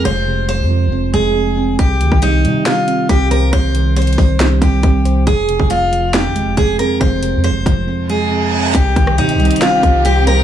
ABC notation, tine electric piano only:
X:1
M:4/4
L:1/8
Q:1/4=138
K:Cm
V:1 name="Tine electric piano" clef=bass
[F,,A,C] C, F,, F, F,, A, F,, C | C, E, C, G, C, C C, c | C, E, C, G, C, C C, c | F,, C, F,, F, F,, A, F,, C |
F,, C, F,, F, F,, A, F,, C | C, E, C, G, C, C C, c |]